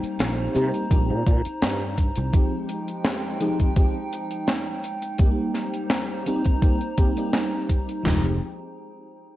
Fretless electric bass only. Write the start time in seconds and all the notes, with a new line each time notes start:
0.03 muted fretless electric bass stroke
0.19 A#1
0.55 C3
0.91 A#1
1.10 A#2
1.27 A#2
1.46 muted fretless electric bass stroke
1.62 G2
2.17 C2
8.05 F1